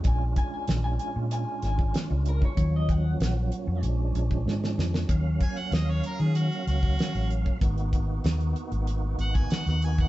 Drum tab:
HH |x-x-x-x-x-x-x-x-|x-x-x-x-x-x-----|x-xxx-xxxxx-xxx-|xxx-xxxxx-xxxxxx|
SD |----o-----o-o---|----o-------oooo|----o-------o---|----o-------oo--|
BD |o-o--------o---o|o-o--------o----|o-o--------o---o|o-o--------o---o|